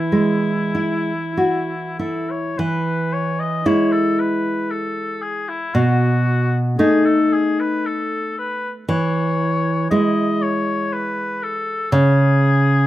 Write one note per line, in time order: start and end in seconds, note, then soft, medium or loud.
0.00 2.55 E3 soft
0.00 0.51 E4 soft
0.00 1.99 E4 soft
0.12 1.12 G#3 soft
0.75 1.74 E4 soft
1.37 1.99 F#4 soft
1.99 2.59 E4 soft
1.99 2.31 A4 soft
2.30 2.60 C#5 medium
2.58 3.63 E3 medium
2.58 3.14 B4 medium
3.13 3.41 C#5 medium
3.39 3.67 D#5 medium
3.66 5.70 G#3 soft
3.66 5.70 E4 soft
3.66 3.93 C#5 medium
3.92 4.21 A4 medium
4.19 4.72 B4 medium
4.70 5.23 A4 medium
5.22 5.50 G#4 medium
5.48 5.76 E4 medium
5.74 6.76 B2 medium
5.74 6.61 F#4 medium
6.78 8.84 A3 soft
6.78 8.84 D#4 soft
6.78 7.07 G#4 medium
7.05 7.35 A4 medium
7.33 7.61 G#4 medium
7.60 7.87 B4 medium
7.86 8.37 A4 medium
8.38 8.70 B4 medium
8.89 9.88 E3 medium
8.89 9.87 C#5 medium
9.90 11.89 G#3 soft
9.90 11.89 E4 soft
9.90 10.43 D#5 medium
10.42 10.94 C#5 medium
10.93 11.44 B4 medium
11.43 11.91 A4 medium
11.91 12.87 C#3 medium
11.91 12.87 G#4 medium